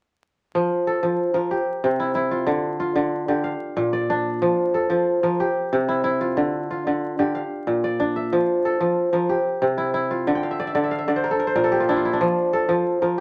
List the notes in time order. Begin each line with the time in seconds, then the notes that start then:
0.55 F3
0.87 A4
1.03 F3
1.34 F3 A#4
1.51 G4
1.84 C3
2.00 E4
2.15 E4
2.31 F4
2.47 D3
2.80 F4
2.96 D3
3.28 D3 G4
3.44 F5
3.77 A#2
3.93 D5
4.10 D4
4.42 F3
4.74 A4
4.90 F3
5.23 F3 A#4
5.40 G4
5.73 C3
5.88 E4
6.04 E4
6.21 F4
6.37 D3
6.71 F4
6.87 D3
7.19 D3 G4
7.35 F5
7.67 A#2
7.84 D5
8.00 D4
8.16 E5
8.33 F3
8.65 A4
8.80 F3
9.13 F3 A#4
9.29 G4
9.62 C3
9.78 E4
9.94 E4
10.11 F4
10.27 D3
10.35 G5
10.43 F5
10.51 E5
10.60 D5
10.67 E5
10.75 D3 D5
10.84 E5
10.91 F5
10.98 E5
11.08 D3 D5
11.16 C5
11.24 A#4
11.31 A4
11.39 A#4
11.47 C5
11.55 A#2 A#4
11.64 A4
11.72 G4
11.80 F4
11.89 D4 E4
11.96 F4
12.05 E4
12.13 D4
12.21 F3
12.53 A4
12.69 F3
13.02 F3 A#4